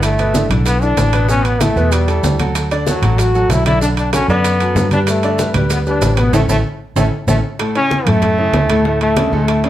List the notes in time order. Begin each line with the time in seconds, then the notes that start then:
Already playing: G1 D3 D4 E4
0.03 A3, high bongo, high conga, high timbale, maracas
0.19 B2 B3 B4, high conga, high timbale, maracas
0.34 D3 D4 E4, high bongo, high conga, low timbale, maracas
0.50 B1 D3 D4 E4, high bongo, low conga, high timbale, maracas
0.66 B3, high bongo, high timbale, maracas
0.82 D3 D4 E4, high bongo, high conga, maracas
0.97 A1, high bongo, low bongo, high conga, high timbale, low timbale, maracas
1.13 B2 B3 B4, high bongo, high timbale, maracas
1.29 B2 B3 C#4 B4, high bongo, high conga, maracas
1.45 B3, high conga, high timbale, maracas
1.60 E3 A3 E4 A4, high bongo, high conga, high timbale, low timbale, maracas
1.76 E2 B2 B3 B4, high bongo, high conga, maracas
1.92 G3, high bongo, high conga, high timbale, maracas
2.08 E3 E4 A4, high bongo, high conga, high timbale, maracas
2.23 D2, high bongo, low bongo, high conga, low timbale, maracas
2.39 F#3 F#4 A4, high bongo, high conga, high timbale, maracas
2.55 high bongo, high conga, high timbale, maracas
2.71 D3 D4 D5, high conga, high timbale, maracas
2.87 F#3 F#4 A4, high bongo, high conga, low timbale, maracas
3.02 A1 F#3 F#4 A4, high bongo, low conga, high timbale, maracas
3.18 F#4, high bongo, high conga, high timbale, maracas
3.34 F#3 F#4 A4, high bongo, high conga, maracas
3.49 B1 E4, high bongo, low bongo, high conga, high timbale, low timbale, maracas
3.66 D3 D4 E4 D5, high bongo, high conga, high timbale, maracas
3.81 D3 D4 D5, high bongo, high conga, maracas
3.97 D4, high conga, high timbale, maracas
4.13 F#3 C#4 F#4 A4, high bongo, high conga, high timbale, low timbale, maracas
4.28 F#2 D3 B3 D4 D5, high bongo, high conga, maracas
4.44 high bongo, high conga, high timbale, maracas
4.60 F#3 F#4 A4, high bongo, high conga, high timbale, maracas
4.75 G2, high bongo, low bongo, high conga, low timbale, maracas
4.91 G3 D4 G4 B4, high bongo, high conga, high timbale, maracas
5.07 A3, high bongo, high conga, high timbale, maracas
5.23 D3 D4 D5, high conga, high timbale, maracas
5.39 G3 G4 B4, high bongo, high conga, low timbale, maracas
5.54 D2 G3 G4 B4, high bongo, low conga, high timbale, maracas
5.70 B3, high bongo, high conga, high timbale, maracas
5.86 G3 D4 G4 B4, high bongo, high conga, maracas
6.01 A1, high bongo, low bongo, high conga, high timbale, low timbale, maracas
6.17 B2 B3 B4, high bongo, high timbale, maracas
6.32 A1 A3 C#4 E4 A4, low bongo, high conga, high timbale, maracas
6.48 A1 A3 C#4 E4 A4, low bongo, high conga, high timbale, maracas
6.96 A1 A3 C#4 E4 A4, low bongo, high conga, high timbale, maracas
7.27 A1 A3 C#4 E4 A4, low bongo, high conga, high timbale, maracas
7.59 A2 A3 A4, high bongo, high conga, high timbale
7.75 C#3 C#4 E4, high conga, high timbale
7.91 high bongo, high conga, low timbale
8.06 F#2 A2 A3 A4, high bongo, low conga, high timbale
8.22 high bongo, high conga, low conga, high timbale
8.38 C#3 C#4 E4, high bongo, high conga
8.53 D2, high bongo, low bongo, high conga, high timbale, low timbale
8.69 A2 A3 A4, high bongo, high conga, high timbale
8.85 A2 A3 A4, high bongo, high conga
9.01 A3, high conga, high timbale
9.17 C#3 C#4 D4, high bongo, high conga, high timbale, low timbale
9.32 D2 A2 A3 A4, high bongo, high conga
9.48 high bongo, high timbale
9.64 C#3 C#4 D4, high bongo, high conga, high timbale